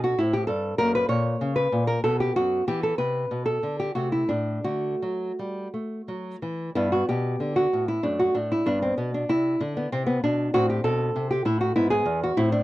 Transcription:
Already playing: B2 D4
0.04 F#4
0.18 A2 C4 E4
0.33 G4
0.47 G2 A4
0.78 F#2 A#3 A#4
0.95 B4
1.09 A#2 C#5
1.41 C#3
1.56 B4
1.72 A#2
1.87 A#4
2.04 B2 B3 A4
2.20 G4
2.36 F#2 F#4
2.67 E3 B3 G4
2.83 A4
2.98 C3 B4
3.31 B2
3.46 A4
3.63 D3
3.80 G4
3.95 C3 A3 F#4
4.12 E4
4.29 A2 D4
4.64 D3 A3 F#4
5.02 F#3
5.39 G3
5.74 A3
6.08 F#3
6.42 E3
6.75 G2 B3 E4
6.92 F#4
7.09 B2 G4
7.40 D3
7.56 F#4
7.73 A2
7.88 E4
8.03 F#2 A3 D4
8.19 F#4
8.35 A2 D4
8.52 E4
8.66 G2 B3 D4
8.82 C4
8.97 B2 B3
9.14 D4
9.29 C3 E4
9.60 D3 D4
9.77 B3
9.92 C3 C4
10.06 B3
10.24 B2 D4
10.54 A2 C4 F#4
10.70 G4
10.84 B2 A4
11.16 C3
11.31 G4
11.45 A2 E4
11.61 F#4
11.76 G#2 B3 E4
11.90 G#4
12.05 E2
12.24 F#4
12.37 A2 C4 E4
12.52 D4

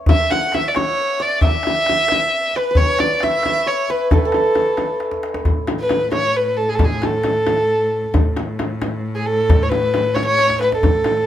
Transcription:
Already playing: C#5
0.06 E5, tombak dum, frame drum
0.30 F#5, tombak tek, frame drum
0.52 E5, tombak tek, frame drum
0.68 D5
0.75 C#5, tombak tek, frame drum
1.19 D5, tombak ka
1.41 E5, tombak dum, frame drum
1.63 tombak tek, frame drum
1.86 tombak tek, frame drum
2.08 tombak tek, frame drum
2.53 B4, tombak ka
2.57 B4
2.71 B4
2.75 C#5, tombak dum, frame drum
2.98 D5, tombak tek, frame drum
3.20 E5, tombak tek, frame drum
3.43 tombak tek, frame drum
3.66 C#5
3.89 B4, tombak ka
4.11 A4, tombak dum, frame drum
4.17 B4
4.25 A4
4.32 tombak tek, frame drum
4.55 tombak tek, frame drum
4.77 tombak tek, frame drum
5.00 tombak tek
5.11 tombak ka
5.23 tombak tek
5.34 tombak ka
5.45 A2, tombak dum, frame drum
5.67 tombak tek, frame drum
5.80 B4
5.89 tombak tek, frame drum
6.12 C#5, tombak tek, frame drum
6.36 B4
6.57 A4
6.69 G#4, tombak ka
6.74 A4
6.79 tombak dum, frame drum
6.84 G#4
7.02 A4, tombak tek, frame drum
7.24 tombak tek, frame drum
7.46 tombak tek, frame drum
8.04 tombak ka
8.14 A2, frame drum, tombak dum
8.36 tombak tek, frame drum
8.59 tombak tek, frame drum
8.82 tombak tek, frame drum
9.15 G#4
9.25 A4
9.38 tombak ka
9.50 tombak dum, frame drum
9.62 C#5
9.69 B4, tombak tek, frame drum
9.94 tombak tek, frame drum
10.14 C#5, tombak tek, frame drum
10.25 C#5
10.38 tombak tek
10.50 tombak ka
10.61 B4, tombak tek
10.72 A4, tombak ka
10.82 A2, tombak dum, frame drum
11.04 tombak tek, frame drum

